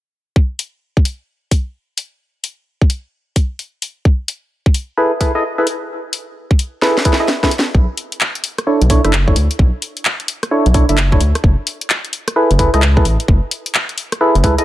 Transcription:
0.36 kick
0.59 open hi-hat
0.97 kick
1.05 open hi-hat
1.51 kick, open hi-hat
1.98 open hi-hat
2.44 open hi-hat
2.82 kick
2.90 open hi-hat
3.36 kick, open hi-hat
3.59 open hi-hat
3.82 open hi-hat
4.05 kick
4.28 open hi-hat
4.66 kick
4.74 open hi-hat
4.97 synth stab E4 G#4 A4 B4
5.21 synth stab E4 G#4 A4 B4, kick, open hi-hat
5.35 synth stab E4 G#4 A4 D#5
5.58 synth stab E4 G#4 A4 B4
5.67 open hi-hat
6.13 open hi-hat
6.51 kick
6.59 open hi-hat
6.82 synth stab E4 G#4 A4 B4, snare
6.98 snare
7.05 synth stab E4 G#4 A4 B4, kick, open hi-hat
7.13 snare
7.20 synth stab E4 G#4 A4 D#5
7.28 snare, open hi-hat
7.43 synth stab E4 G#4 A4 B4, kick, snare
7.51 open hi-hat
7.59 snare
7.75 analog synth bass B1, kick
7.97 open hi-hat
8.12 closed hi-hat
8.21 clap
8.35 closed hi-hat
8.44 open hi-hat
8.58 cross-stick, closed hi-hat
8.67 synth stab D4 E4 A4 C#5
8.81 analog synth bass B1, closed hi-hat
8.90 synth stab D4 E4 A4 C#5, kick, open hi-hat
9.05 analog synth bass F#1, synth stab D4 E4 A4 E5, cross-stick, closed hi-hat
9.13 clap
9.28 synth stab D4 E4 A4 C#5, kick
9.36 analog synth bass D2, open hi-hat
9.51 closed hi-hat
9.59 analog synth bass B1, kick
9.82 open hi-hat
9.97 closed hi-hat
10.05 clap
10.20 closed hi-hat
10.28 open hi-hat
10.43 cross-stick, closed hi-hat
10.51 synth stab D4 E4 A4 C#5
10.66 analog synth bass B1, closed hi-hat
10.74 synth stab D4 E4 A4 C#5, kick, open hi-hat
10.89 analog synth bass F#1, synth stab D4 E4 A4 E5, closed hi-hat
10.97 clap, open hi-hat
11.12 synth stab D4 E4 A4 C#5, kick
11.21 analog synth bass D2, open hi-hat
11.35 cross-stick, closed hi-hat
11.44 analog synth bass F#1, kick
11.67 open hi-hat
11.81 closed hi-hat
11.90 clap
12.05 closed hi-hat
12.13 open hi-hat
12.28 cross-stick, closed hi-hat
12.36 synth stab E4 G#4 A4 B4
12.51 analog synth bass F#1, closed hi-hat
12.59 synth stab E4 G#4 A4 B4, kick, open hi-hat
12.74 analog synth bass C#2, synth stab E4 G#4 A4 D#5, cross-stick, closed hi-hat
12.82 clap
12.97 synth stab E4 G#4 A4 B4, kick
13.05 analog synth bass A1, open hi-hat
13.20 closed hi-hat
13.28 analog synth bass F#1, kick
13.51 open hi-hat
13.66 closed hi-hat
13.75 clap
13.89 closed hi-hat
13.98 open hi-hat
14.12 cross-stick, closed hi-hat
14.21 synth stab E4 G#4 A4 B4
14.35 analog synth bass F#1, closed hi-hat
14.44 analog synth bass C#2, synth stab E4 G#4 A4 B4, kick, open hi-hat
14.58 synth stab E4 G#4 A4 D#5, closed hi-hat

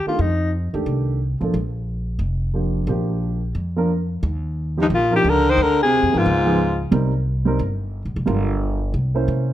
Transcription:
0.06 grand piano D#3 A3 D4 G4, alto saxophone F4, muted upright bass stroke
0.19 upright bass F2, alto saxophone D#4
0.73 upright bass E2, grand piano D#3 A3 D4 G4
0.86 upright bass C2
1.40 upright bass A1, grand piano F3 A#3 D4 A4
1.54 upright bass A#1
2.19 upright bass F1
2.54 grand piano F3 A#3 D4 G4
2.87 upright bass A#1, grand piano F3 A#3 D4 G4
3.55 upright bass F2
3.76 grand piano F3 A#3 D4 A#4
4.23 upright bass D#2
4.77 grand piano F3 D4 D#4 G4
4.81 baritone saxophone G2, alto saxophone D#4
4.90 upright bass A#1, baritone saxophone A#2
4.95 alto saxophone F4
5.11 grand piano F3 D4 D#4 A#4
5.15 baritone saxophone A#2, alto saxophone G4
5.24 upright bass C#2, baritone saxophone D3
5.30 alto saxophone A#4
5.50 baritone saxophone D#3, alto saxophone C5
5.57 upright bass D2
5.62 baritone saxophone D3, alto saxophone A#4
5.83 baritone saxophone C3, alto saxophone G#4
6.03 upright bass F2
6.12 upright bass G#2, grand piano F3 B3 D#4 A#4
6.17 baritone saxophone G#2, alto saxophone F4
6.26 upright bass C#2
6.45 grand piano F3 B3 D#4 G#4
6.91 upright bass C2, grand piano G3 C4 D#4 A#4
7.45 grand piano G3 C4 D#4 A#4
7.59 upright bass G1
8.05 upright bass A#1
8.16 upright bass F1
8.26 upright bass G1, grand piano G3 D4 F4 A#4
8.94 upright bass C2
9.15 grand piano A#3 C#4 E4 C5
9.28 upright bass C3

